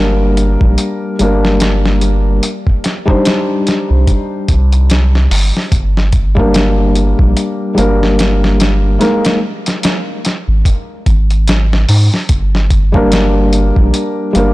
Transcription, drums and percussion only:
0.37 closed hi-hat
0.61 kick
0.78 closed hi-hat
1.19 closed hi-hat
1.45 snare
1.60 snare, closed hi-hat
1.85 snare
2.01 closed hi-hat
2.43 closed hi-hat
2.67 kick
2.84 snare, closed hi-hat
3.08 kick
3.25 snare, closed hi-hat
3.67 snare, closed hi-hat
4.07 kick, closed hi-hat
4.48 kick, closed hi-hat
4.72 closed hi-hat
4.90 snare, closed hi-hat
5.15 snare
5.31 open hi-hat
5.57 snare
5.72 kick, closed hi-hat
5.97 snare
6.12 kick, closed hi-hat
6.37 kick
6.54 snare, closed hi-hat
6.95 closed hi-hat
7.19 kick
7.37 closed hi-hat
7.78 closed hi-hat
8.03 snare
8.19 snare, closed hi-hat
8.44 snare
8.60 snare, closed hi-hat
9.01 snare, closed hi-hat
9.25 snare, closed hi-hat
9.66 snare, closed hi-hat
9.83 snare, closed hi-hat
10.25 snare, closed hi-hat
10.65 kick, closed hi-hat
11.06 kick, closed hi-hat
11.30 closed hi-hat
11.48 snare, closed hi-hat
11.73 snare
11.89 open hi-hat
12.14 snare
12.29 kick, closed hi-hat
12.55 snare
12.70 kick, closed hi-hat
12.94 kick
13.12 snare, closed hi-hat
13.53 closed hi-hat
13.76 kick
13.94 closed hi-hat
14.35 closed hi-hat

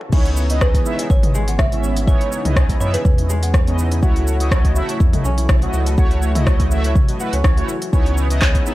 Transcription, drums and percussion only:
0.01 mid tom
0.12 kick, crash, shaker
0.25 closed hi-hat, shaker
0.37 shaker
0.50 closed hi-hat, shaker
0.61 kick, cross-stick, shaker
0.74 kick, closed hi-hat, shaker
0.86 shaker
0.99 closed hi-hat, shaker
1.10 kick, shaker
1.23 closed hi-hat, mid tom, shaker
1.35 shaker
1.48 closed hi-hat, shaker
1.59 kick, cross-stick, mid tom, shaker
1.72 closed hi-hat, shaker
1.84 shaker
1.97 closed hi-hat, shaker
2.07 kick, shaker
2.21 closed hi-hat, shaker
2.32 shaker
2.45 closed hi-hat, mid tom, shaker
2.56 kick, cross-stick, shaker
2.69 kick, closed hi-hat, shaker
2.81 shaker
2.94 closed hi-hat, shaker
3.05 kick, mid tom, shaker
3.18 closed hi-hat, shaker
3.30 shaker
3.43 closed hi-hat, shaker
3.54 kick, cross-stick, shaker
3.67 closed hi-hat, shaker
3.78 shaker
3.92 closed hi-hat, shaker
4.03 kick, shaker
4.16 closed hi-hat, shaker
4.27 shaker
4.40 closed hi-hat, shaker
4.51 kick, cross-stick, shaker
4.65 kick, closed hi-hat, shaker
4.76 shaker
4.89 closed hi-hat, shaker
5.00 kick, shaker
5.13 closed hi-hat, mid tom, shaker
5.25 shaker
5.38 closed hi-hat, shaker
5.49 kick, cross-stick, mid tom, shaker
5.62 closed hi-hat, shaker
5.73 shaker
5.86 closed hi-hat, shaker
5.98 kick, shaker
6.11 closed hi-hat, shaker
6.22 shaker
6.35 closed hi-hat, mid tom, shaker
6.47 kick, cross-stick, shaker
6.60 kick, closed hi-hat, shaker
6.71 shaker
6.84 closed hi-hat, shaker
6.95 kick, mid tom, shaker
7.08 closed hi-hat, shaker
7.20 shaker
7.33 closed hi-hat, shaker
7.44 kick, cross-stick, shaker
7.57 closed hi-hat, shaker
7.69 shaker
7.82 closed hi-hat, shaker
7.93 kick, shaker
8.06 closed hi-hat, shaker
8.18 shaker
8.30 closed hi-hat, shaker
8.42 kick, cross-stick, clap, shaker
8.55 kick, closed hi-hat, shaker
8.66 shaker

